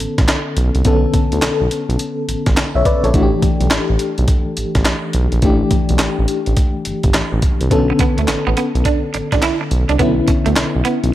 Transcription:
Already playing: D3 B3 C#4 A4
0.00 closed hi-hat
0.18 A1, kick, snare, closed hi-hat
0.28 snare, clap, closed hi-hat
0.57 B1, closed hi-hat
0.75 C2, closed hi-hat
0.85 B1 D3 B3 C#4 A4, kick, closed hi-hat
1.14 kick, closed hi-hat
1.32 D2, closed hi-hat
1.42 B1, snare, clap, closed hi-hat
1.61 B1
1.71 closed hi-hat
1.89 B1, closed hi-hat
1.99 closed hi-hat
2.28 A1, closed hi-hat
2.46 A1, kick, snare, closed hi-hat
2.57 B1, snare, clap, closed hi-hat
2.75 B1 C#5 E5
2.85 B4 D5, kick, closed hi-hat
3.04 A#1 A4 C#5, closed hi-hat
3.13 A1 E3 A3 D4 F#4, kick, closed hi-hat
3.23 G4
3.42 kick, closed hi-hat
3.61 B1, closed hi-hat
3.71 A1, snare, clap, closed hi-hat
3.90 A1
3.99 closed hi-hat
4.18 B1, closed hi-hat
4.28 kick, closed hi-hat
4.57 A1, closed hi-hat
4.75 A1, kick, snare, closed hi-hat
4.85 snare, clap, closed hi-hat
5.13 B1, closed hi-hat
5.32 A#1, closed hi-hat
5.42 A1 E3 A3 D4 G4, kick, closed hi-hat
5.71 kick, closed hi-hat
5.89 B1, closed hi-hat
5.99 A1, snare, clap, closed hi-hat
6.19 A1
6.28 closed hi-hat
6.46 A1, closed hi-hat
6.57 kick, closed hi-hat
6.85 G1, closed hi-hat
7.03 G1, kick, closed hi-hat
7.14 A1, snare, clap, closed hi-hat
7.32 A1
7.42 kick, closed hi-hat
7.61 C2, closed hi-hat
7.70 B1 D3 B3 C#4 A4, kick, closed hi-hat
7.90 muted clean electric guitar stroke
7.99 B3, kick, closed hi-hat
8.18 D2 A3, closed hi-hat
8.28 A1, muted clean electric guitar stroke, snare, clap, closed hi-hat
8.47 A1 B3
8.57 B3, closed hi-hat
8.75 B1, closed hi-hat
8.85 D4, kick, closed hi-hat
9.14 A1, muted clean electric guitar stroke, closed hi-hat
9.32 A1 D4, kick, snare, closed hi-hat
9.42 E4, snare, clap, closed hi-hat
9.61 muted clean electric guitar stroke
9.71 B1, closed hi-hat
9.89 C2 D4, closed hi-hat
9.99 B1 D3 B3 C#4 E4, kick, closed hi-hat
10.28 muted clean electric guitar stroke, kick, closed hi-hat
10.46 D2 A3, closed hi-hat
10.56 B1, snare, clap, closed hi-hat
10.75 B1
10.85 B3, closed hi-hat
11.04 B1, closed hi-hat

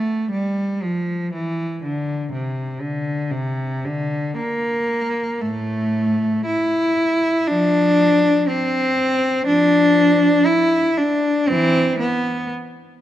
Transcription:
Already playing: A3
0.32 G3
0.83 F3
1.33 E3
1.83 D3
2.32 C3
2.81 D3
3.31 C3
3.85 D3
4.38 A#3
5.41 A2 A3
6.46 E4
7.48 F3 D4
8.48 C4
9.46 F3 D4
10.46 E4
10.97 D4
11.48 E3 C4
11.99 B3

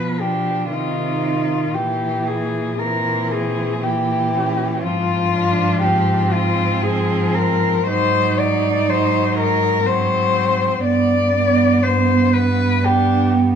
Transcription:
Already playing: B2 F3 B3 B4
0.20 D4 G4
0.70 C3 D#3 D#4 F4
1.74 A#2 E3 A#3 G4
2.27 G#4
2.79 E3 C4 A#4
3.32 G#4
3.83 E3 A#3 G4
4.36 C#4
4.83 G#2 F3 C4 F4
5.36 D4
5.82 C4 G4
6.32 F4
6.83 F3 G#4
7.34 A#4
7.87 G#2 F#3 D#4 C5
8.39 D5
8.89 F#3 C5
9.38 A#4
9.86 F#3 C4 C5
10.84 G2 B3 D5
11.83 C5
12.33 B4
12.83 B3 D4 G4
13.34 B3

